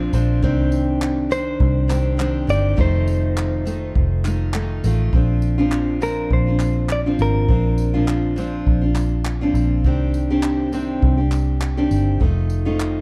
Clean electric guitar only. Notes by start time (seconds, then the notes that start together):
Already playing: F5
1.32 C5
2.50 D5
2.81 C5
6.03 A#4
6.33 C5
6.92 D5
7.22 A#4